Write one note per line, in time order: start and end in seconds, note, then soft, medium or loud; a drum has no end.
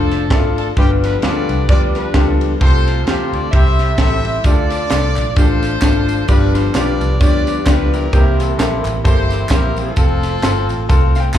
0.00 0.30 F1 loud
0.00 0.74 A3 medium
0.00 0.22 D4 medium
0.00 0.53 D4 medium
0.00 0.73 D4 medium
0.00 0.22 F4 medium
0.00 0.53 F4 medium
0.00 0.73 F4 medium
0.00 0.53 A4 loud
0.00 0.22 C5 medium
0.11 snare soft
0.11 ride medium
0.30 0.70 G#1 medium
0.30 0.67 D4 medium
0.30 0.37 E4 medium
0.30 0.67 A4 loud
0.30 kick medium
0.30 snare loud
0.30 ride medium
0.38 0.70 F4 medium
0.58 0.66 A4 medium
0.58 ride medium
0.76 1.16 G1 loud
0.76 1.45 G2 medium
0.76 2.57 F3 medium
0.76 2.57 G3 medium
0.76 1.13 G3 medium
0.76 0.83 A3 soft
0.76 1.65 B3 medium
0.76 1.14 B3 medium
0.76 2.57 D4 medium
0.76 1.13 D4 medium
0.76 1.65 D4 medium
0.76 1.14 F4 medium
0.76 2.57 G4 medium
0.76 0.90 G4 loud
0.76 1.14 B4 medium
0.76 kick loud
0.76 ride medium
0.82 2.60 B3 medium
1.03 1.22 B4 loud
1.03 snare soft
1.03 ride medium
1.22 1.45 D2 medium
1.22 1.59 G3 medium
1.22 1.59 B3 medium
1.22 1.59 D4 medium
1.22 1.67 F4 medium
1.22 1.60 F4 medium
1.22 1.30 G#4 medium
1.22 1.67 B4 medium
1.22 1.67 D5 loud
1.22 snare medium
1.22 ride medium
1.30 1.62 A4 medium
1.49 1.66 C2 loud
1.49 ride medium
1.68 2.08 D2 loud
1.68 2.05 G3 medium
1.68 2.06 B3 medium
1.68 2.05 D4 medium
1.68 1.95 F4 medium
1.68 2.06 F4 medium
1.68 1.94 B4 medium
1.68 1.80 D5 loud
1.68 2.06 D5 medium
1.68 kick loud
1.68 ride medium
1.95 2.57 D4 medium
1.95 2.57 F4 medium
1.95 2.34 B4 medium
1.95 snare soft
1.95 ride medium
2.14 2.53 C#2 loud
2.14 2.51 G3 medium
2.14 2.51 B3 medium
2.14 2.51 D4 medium
2.14 2.51 F4 medium
2.14 2.21 G4 medium
2.14 kick loud
2.14 snare loud
2.14 ride medium
2.20 2.54 A4 medium
2.41 ride medium
2.61 3.06 C2 loud
2.61 3.29 C3 medium
2.61 3.51 A3 medium
2.61 3.51 C4 medium
2.61 2.97 C4 medium
2.61 3.51 F4 medium
2.61 2.97 F4 medium
2.61 3.49 F4 medium
2.61 3.49 A4 medium
2.61 2.97 A4 medium
2.61 3.04 C5 loud
2.61 kick loud
2.61 ride medium
2.87 snare soft
2.87 ride medium
3.06 3.28 E2 medium
3.06 3.43 C4 medium
3.06 3.43 F4 medium
3.06 3.43 G4 medium
3.06 3.31 C5 loud
3.06 snare loud
3.06 ride medium
3.32 3.50 D2 medium
3.32 3.52 D5 loud
3.32 ride medium
3.52 3.92 C2 loud
3.52 4.21 C3 medium
3.52 4.43 G3 medium
3.52 3.89 C4 medium
3.52 4.43 C4 medium
3.52 4.43 E4 medium
3.52 3.89 E4 medium
3.52 3.98 G4 medium
3.52 3.89 G4 medium
3.52 3.99 C5 medium
3.52 3.98 E5 loud
3.52 kick loud
3.52 ride medium
3.79 snare soft
3.79 ride medium
3.98 4.37 A1 medium
3.98 4.35 C4 medium
3.98 4.35 E4 medium
3.98 4.42 G4 medium
3.98 4.35 A4 medium
3.98 4.42 C5 medium
3.98 4.42 E5 loud
3.98 kick loud
3.98 snare loud
3.98 ride medium
4.25 ride medium
4.44 4.83 D2 loud
4.44 5.13 D3 medium
4.44 6.25 A3 medium
4.44 4.81 D4 medium
4.44 6.25 D4 medium
4.44 4.81 F4 medium
4.44 5.33 F4 medium
4.44 6.25 F4 medium
4.44 4.51 G4 medium
4.44 5.33 A4 medium
4.44 5.36 D5 loud
4.44 kick loud
4.44 ride medium
4.44 tambourine medium
4.51 4.84 A4 medium
4.70 snare soft
4.70 ride medium
4.70 tambourine medium
4.90 5.13 C2 loud
4.90 5.27 D4 medium
4.90 5.27 F4 medium
4.90 5.27 A4 medium
4.90 snare loud
4.90 clap medium
4.90 ride medium
4.90 tambourine medium
5.16 5.34 A#1 medium
5.16 clap medium
5.16 ride medium
5.16 tambourine medium
5.36 5.76 A1 loud
5.36 5.73 D4 medium
5.36 5.73 F4 medium
5.36 6.25 F4 medium
5.36 5.43 G4 medium
5.36 6.25 A4 medium
5.36 6.29 C5 loud
5.36 kick loud
5.36 ride medium
5.36 tambourine medium
5.42 5.75 A4 medium
5.63 snare soft
5.63 ride medium
5.63 tambourine medium
5.82 6.21 G#1 loud
5.82 6.19 D4 medium
5.82 5.89 E4 medium
5.82 6.19 A4 medium
5.82 kick medium
5.82 snare loud
5.82 clap loud
5.82 ride medium
5.82 tambourine loud
5.89 6.22 F4 medium
6.09 ride medium
6.09 tambourine medium
6.28 6.68 G1 loud
6.28 6.97 G2 medium
6.28 8.09 F3 medium
6.28 8.09 G3 medium
6.28 6.65 B3 medium
6.28 8.09 B3 medium
6.28 6.65 D4 medium
6.28 7.17 D4 medium
6.28 8.09 D4 medium
6.28 6.73 F4 medium
6.28 6.65 F4 medium
6.28 8.09 G4 medium
6.28 6.65 G4 medium
6.28 6.55 B4 loud
6.28 6.65 D5 medium
6.28 kick loud
6.28 ride medium
6.28 tambourine medium
6.54 6.74 C5 loud
6.54 snare soft
6.54 ride medium
6.54 tambourine medium
6.74 6.97 B1 medium
6.74 7.11 B3 medium
6.74 7.11 D4 medium
6.74 7.18 F4 medium
6.74 7.11 F4 medium
6.74 7.11 G4 medium
6.74 7.18 B4 medium
6.74 7.19 D5 loud
6.74 7.11 D5 medium
6.74 snare loud
6.74 clap medium
6.74 ride medium
6.74 tambourine medium
7.01 7.18 C2 loud
7.01 ride medium
7.01 tambourine medium
7.19 7.60 D2 loud
7.19 7.57 B3 medium
7.19 7.57 D4 medium
7.19 8.08 F4 medium
7.19 7.57 F4 medium
7.19 7.57 G4 medium
7.19 7.64 B4 medium
7.19 7.27 C#5 medium
7.19 7.63 D5 loud
7.19 kick loud
7.19 ride medium
7.19 tambourine medium
7.27 7.60 D5 medium
7.47 snare soft
7.47 ride medium
7.47 tambourine medium
7.66 8.06 C#2 loud
7.66 7.73 A3 medium
7.66 8.03 D4 medium
7.66 8.03 F4 medium
7.66 8.03 G4 medium
7.66 7.92 B4 loud
7.66 8.03 D5 medium
7.66 kick loud
7.66 snare loud
7.66 clap loud
7.66 ride medium
7.66 tambourine loud
7.72 8.06 B3 medium
7.92 8.37 E4 medium
7.92 8.81 G4 medium
7.92 8.39 A#4 loud
7.92 ride medium
7.92 tambourine medium
8.13 8.52 C2 loud
8.13 8.81 C3 medium
8.13 9.94 E3 medium
8.13 9.94 G3 medium
8.13 8.49 A#3 medium
8.13 9.94 A#3 medium
8.13 8.49 C4 medium
8.13 9.94 C4 medium
8.13 8.19 D#4 medium
8.13 8.49 G4 medium
8.13 9.94 G4 medium
8.13 8.49 C5 medium
8.13 kick loud
8.13 ride medium
8.13 tambourine medium
8.19 8.52 E4 medium
8.38 8.89 E4 medium
8.38 8.80 A4 medium
8.38 snare soft
8.38 ride medium
8.38 tambourine medium
8.58 8.81 A#1 medium
8.58 8.95 A#3 medium
8.58 8.95 C4 medium
8.58 8.95 E4 medium
8.58 8.95 G4 medium
8.58 8.95 A4 medium
8.58 snare loud
8.58 clap medium
8.58 ride medium
8.58 tambourine medium
8.85 9.02 A1 medium
8.85 clap medium
8.85 ride medium
8.85 tambourine medium
9.04 9.44 G1 loud
9.04 9.41 A#3 medium
9.04 9.41 C4 medium
9.04 9.41 E4 medium
9.04 9.94 E4 medium
9.04 9.41 G4 medium
9.04 9.94 G4 medium
9.04 9.41 A4 medium
9.04 9.48 C5 loud
9.04 kick loud
9.04 ride medium
9.04 tambourine medium
9.30 snare soft
9.30 ride medium
9.30 tambourine medium
9.49 9.90 A#1 medium
9.49 9.87 A#3 medium
9.49 9.87 C4 medium
9.49 9.87 E4 medium
9.49 9.87 G4 medium
9.49 9.77 A#4 loud
9.49 9.87 C5 medium
9.49 kick loud
9.49 snare loud
9.49 clap loud
9.49 ride medium
9.49 tambourine loud
9.76 11.31 C4 medium
9.76 11.31 F4 medium
9.76 11.31 A4 loud
9.76 ride medium
9.76 tambourine medium
9.96 10.36 F1 loud
9.96 11.38 A3 medium
9.96 11.38 C4 medium
9.96 10.33 C4 medium
9.96 11.38 F4 medium
9.96 10.33 F4 medium
9.96 10.33 A4 medium
9.96 kick loud
9.96 ride medium
9.96 tambourine medium
10.23 snare soft
10.23 ride medium
10.23 tambourine medium
10.42 10.69 G1 medium
10.42 10.79 C4 medium
10.42 10.79 F4 medium
10.42 10.79 A4 loud
10.42 snare loud
10.42 clap medium
10.42 ride medium
10.42 tambourine medium
10.69 10.86 A1 medium
10.69 ride medium
10.69 tambourine medium
10.89 11.28 C2 medium
10.89 11.25 C4 medium
10.89 11.25 F4 medium
10.89 11.25 A4 loud
10.89 kick loud
10.89 ride medium
10.89 tambourine medium
11.15 11.20 F5 medium
11.15 snare soft
11.15 ride medium
11.15 tambourine medium
11.20 11.34 G5 medium
11.34 11.38 D#2 medium
11.34 11.38 C4 medium
11.34 11.38 F4 medium
11.34 11.38 A4 loud
11.34 11.38 A5 medium
11.34 kick loud
11.34 clap loud
11.34 tambourine loud